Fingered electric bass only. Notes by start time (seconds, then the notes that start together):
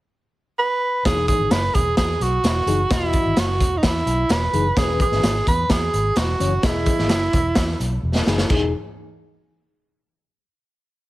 1.05 E1
1.40 G#1
1.51 F#1
1.75 E1
1.98 E2
2.20 B1
2.43 E1
2.66 F#1
2.91 E1
3.25 G#1
3.37 F#1
3.61 E1
3.84 E2
4.06 B1
4.30 E1
4.53 F#1
4.77 E1
5.12 G#1
5.23 G#1
5.47 E2
5.70 E2
5.93 G#1
6.16 E1
6.40 F#1
6.63 E1
6.99 G#1
7.10 F#1
7.34 E1
7.56 E2
7.80 B1
8.03 E1
8.27 F#1
8.50 E1